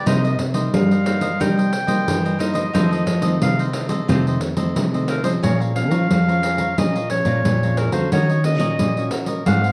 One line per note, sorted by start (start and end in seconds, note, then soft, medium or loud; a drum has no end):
0.06 0.35 C3 loud
0.06 0.71 C3 medium
0.06 0.52 G3 medium
0.06 0.52 A#3 medium
0.06 0.22 D#4 medium
0.06 0.52 D#4 medium
0.06 0.22 A#4 medium
0.06 0.22 C5 medium
0.06 0.41 D#5 medium
0.06 0.23 D#5 medium
0.06 pandeiro medium
0.24 0.38 A#4 soft
0.24 0.38 C5 soft
0.24 0.38 D#5 medium
0.24 pandeiro soft
0.39 0.68 C3 medium
0.39 muted cavaquinho stroke soft
0.39 pandeiro medium
0.54 1.01 G3 medium
0.54 1.01 A#3 medium
0.54 1.01 D#4 medium
0.54 0.89 A#4 medium
0.54 0.88 C5 medium
0.54 0.88 D#5 medium
0.54 pandeiro medium
0.74 1.38 G2 medium
0.74 1.31 G3 medium
0.74 1.42 F5 medium
0.74 pandeiro medium
0.91 1.05 A#4 soft
0.91 1.05 C5 soft
0.91 1.06 D#5 soft
0.91 pandeiro soft
1.05 1.27 G3 medium
1.05 1.27 A#3 medium
1.05 1.22 D#4 soft
1.05 1.27 D#4 medium
1.05 1.21 A#4 medium
1.05 1.20 C5 medium
1.05 1.20 D#5 medium
1.05 pandeiro medium
1.21 1.39 A#4 medium
1.21 1.38 C5 medium
1.21 1.38 D#5 medium
1.21 pandeiro medium
1.40 2.05 C3 medium
1.40 1.70 G3 loud
1.40 1.73 G3 medium
1.40 1.73 A#3 medium
1.40 1.56 D#4 medium
1.40 1.73 D#4 medium
1.40 1.56 A#4 medium
1.40 1.57 C5 medium
1.40 1.56 D#5 medium
1.40 2.39 G5 loud
1.40 pandeiro medium
1.57 1.72 A#4 soft
1.57 1.71 C5 soft
1.57 1.71 D#5 soft
1.57 pandeiro soft
1.72 muted cavaquinho stroke soft
1.72 pandeiro medium
1.87 2.35 G3 medium
1.87 2.35 A#3 medium
1.87 2.35 D#4 medium
1.87 2.22 A#4 medium
1.87 2.22 C5 medium
1.87 2.22 D#5 medium
1.87 pandeiro medium
2.08 2.72 G2 medium
2.08 2.37 E3 medium
2.08 pandeiro medium
2.25 2.38 A#4 soft
2.25 2.38 C5 soft
2.25 2.39 D#5 medium
2.25 pandeiro soft
2.39 2.69 G3 medium
2.39 2.69 A#3 medium
2.39 2.56 D#4 soft
2.39 2.69 D#4 medium
2.39 2.54 A#4 medium
2.39 2.53 C5 medium
2.39 3.37 D#5 medium
2.39 2.52 D#5 medium
2.39 pandeiro medium
2.54 2.72 A#4 medium
2.54 2.72 C5 medium
2.54 2.72 D#5 medium
2.54 pandeiro medium
2.73 3.39 F2 medium
2.73 3.07 D#3 medium
2.73 3.04 F3 loud
2.73 3.07 A3 medium
2.73 3.07 C4 medium
2.73 2.90 F4 medium
2.73 2.90 A4 medium
2.73 2.90 C5 medium
2.73 2.90 D#5 medium
2.73 pandeiro medium
2.91 3.05 A4 soft
2.91 3.06 C5 soft
2.91 3.06 D#5 medium
2.91 pandeiro soft
3.06 3.36 F3 medium
3.06 muted cavaquinho stroke soft
3.06 pandeiro medium
3.22 3.69 D#3 medium
3.22 3.69 A3 medium
3.22 3.69 C4 medium
3.22 3.57 A4 medium
3.22 3.56 C5 medium
3.22 3.56 D#5 medium
3.22 pandeiro medium
3.41 4.06 C3 medium
3.41 3.99 C3 medium
3.41 3.63 F5 medium
3.41 pandeiro medium
3.59 3.73 A4 soft
3.59 3.73 C5 soft
3.59 3.74 D#5 medium
3.59 pandeiro soft
3.73 4.03 D#3 medium
3.73 4.03 A3 medium
3.73 4.04 C4 medium
3.73 3.90 F4 medium
3.73 3.90 A4 medium
3.73 3.89 C5 medium
3.73 3.88 D#5 medium
3.73 pandeiro medium
3.89 4.07 A4 medium
3.89 4.07 C5 medium
3.89 4.06 D#5 medium
3.89 pandeiro medium
4.08 4.73 F2 medium
4.08 4.38 C3 loud
4.08 4.54 D#3 medium
4.08 4.54 A3 medium
4.08 4.54 C4 medium
4.08 4.24 F4 medium
4.08 4.25 A4 medium
4.08 4.25 C5 medium
4.08 4.25 D#5 medium
4.08 pandeiro medium
4.27 4.40 A4 soft
4.27 4.41 C5 soft
4.27 4.41 D#5 soft
4.27 pandeiro soft
4.41 muted cavaquinho stroke soft
4.41 pandeiro medium
4.56 4.86 D#3 medium
4.56 4.87 A3 medium
4.56 4.87 C4 medium
4.56 4.91 A4 medium
4.56 4.91 C5 medium
4.56 4.90 D#5 medium
4.56 pandeiro medium
4.76 5.05 C3 medium
4.76 5.40 C3 medium
4.76 pandeiro medium
4.94 5.22 D#3 medium
4.94 5.22 A3 medium
4.94 5.22 C4 medium
4.94 5.07 A4 soft
4.94 5.08 C5 soft
4.94 5.08 D#5 medium
4.94 pandeiro soft
5.08 5.25 F4 medium
5.08 5.24 A4 medium
5.08 5.23 A#4 medium
5.08 5.23 C5 medium
5.08 5.23 D#5 medium
5.08 pandeiro medium
5.24 5.74 F3 medium
5.24 5.74 G#3 medium
5.24 5.75 C#4 medium
5.24 5.42 A4 medium
5.24 5.32 C5 medium
5.24 5.41 C5 medium
5.24 5.41 D#5 medium
5.24 pandeiro medium
5.43 5.91 A#2 medium
5.43 6.07 A#2 medium
5.43 5.59 G#4 medium
5.43 5.58 C#5 medium
5.43 5.59 C#5 medium
5.43 5.59 F5 medium
5.43 5.59 A#5 medium
5.43 pandeiro medium
5.60 5.75 C#5 soft
5.60 5.75 F5 soft
5.60 5.75 A#5 soft
5.60 pandeiro soft
5.75 6.08 F3 medium
5.75 6.08 G#3 medium
5.75 6.08 C#4 medium
5.75 6.79 F5 loud
5.75 muted cavaquinho stroke soft
5.75 pandeiro medium
5.91 6.07 F3 medium
5.91 6.25 C#5 soft
5.91 6.25 F5 medium
5.91 6.25 A#5 medium
5.91 pandeiro medium
6.10 6.74 F2 medium
6.10 6.39 F3 medium
6.10 pandeiro medium
6.28 6.73 F3 medium
6.28 6.73 G#3 medium
6.28 6.73 C#4 medium
6.28 6.42 C#5 soft
6.28 6.42 F5 soft
6.28 6.43 A#5 soft
6.28 pandeiro soft
6.43 6.59 G#4 soft
6.43 6.59 C#5 soft
6.43 6.58 F5 medium
6.43 6.57 A#5 medium
6.43 pandeiro medium
6.58 6.76 C#5 medium
6.58 6.76 F5 medium
6.58 6.75 A#5 medium
6.58 pandeiro medium
6.78 7.42 A#2 medium
6.78 7.21 A#2 medium
6.78 6.98 F3 medium
6.78 6.98 G#3 medium
6.78 6.98 C#4 medium
6.78 6.93 G#4 medium
6.78 6.93 C#5 medium
6.78 7.10 D#5 medium
6.78 6.94 F5 medium
6.78 6.94 A#5 medium
6.78 pandeiro medium
6.95 7.09 C#5 soft
6.95 7.10 F5 soft
6.95 7.10 A#5 soft
6.95 pandeiro soft
7.10 7.42 F3 medium
7.10 7.42 G#3 medium
7.10 7.43 C#4 medium
7.10 7.79 C#5 medium
7.10 muted cavaquinho stroke soft
7.10 pandeiro medium
7.25 7.41 A#2 medium
7.25 7.60 C#5 medium
7.25 7.60 F5 medium
7.25 7.59 A#5 medium
7.25 pandeiro medium
7.45 7.88 A#2 medium
7.45 pandeiro medium
7.63 7.91 F3 medium
7.63 7.91 G#3 medium
7.63 7.91 C#4 medium
7.63 7.76 C#5 soft
7.63 7.77 F5 soft
7.63 7.77 A#5 soft
7.63 pandeiro soft
7.77 7.93 G#4 medium
7.77 7.92 A#4 medium
7.77 7.93 C#5 medium
7.77 7.92 F5 medium
7.77 7.91 A#5 medium
7.77 pandeiro medium
7.92 8.08 D3 medium
7.92 8.39 A#3 medium
7.92 8.39 C#4 medium
7.92 8.39 F#4 medium
7.92 8.10 C5 medium
7.92 8.10 C#5 medium
7.92 8.10 F5 medium
7.92 8.10 A#5 medium
7.92 pandeiro medium
8.12 8.60 D#3 medium
8.12 8.76 D#3 medium
8.12 8.28 F#4 medium
8.12 8.28 A#4 medium
8.12 8.44 C#5 loud
8.12 8.28 C#5 medium
8.12 8.28 D#5 medium
8.12 pandeiro medium
8.30 8.44 A#4 soft
8.30 8.44 C#5 soft
8.30 8.44 D#5 soft
8.30 pandeiro soft
8.44 8.90 A#3 medium
8.44 8.90 C#4 medium
8.44 8.91 F#4 medium
8.44 9.15 D#5 loud
8.44 muted cavaquinho stroke soft
8.44 pandeiro medium
8.60 8.75 A#2 medium
8.60 8.94 A#4 medium
8.60 8.94 C#5 medium
8.60 8.93 D#5 medium
8.60 pandeiro medium
8.79 9.43 A#2 medium
8.79 9.08 A#2 medium
8.79 pandeiro medium
8.97 9.42 A#3 medium
8.97 9.42 C#4 medium
8.97 9.42 F#4 medium
8.97 9.11 A#4 soft
8.97 9.12 C#5 soft
8.97 9.12 D#5 medium
8.97 pandeiro soft
9.11 9.28 F#4 soft
9.11 9.27 A#4 soft
9.11 9.26 C#5 medium
9.11 9.26 D#5 medium
9.11 pandeiro medium
9.26 9.45 A#4 medium
9.26 9.44 C#5 medium
9.26 9.44 D#5 medium
9.26 pandeiro medium
9.46 9.72 G#2 medium
9.46 9.72 F#3 medium
9.46 9.72 C4 medium
9.46 9.72 D#4 medium
9.46 9.62 F#4 medium
9.46 9.62 G#4 medium
9.46 9.62 C5 medium
9.46 9.72 F5 medium
9.46 9.63 F#5 medium
9.46 pandeiro medium
9.64 9.72 G#4 soft
9.64 9.72 C5 soft
9.64 9.72 F#5 soft
9.64 pandeiro soft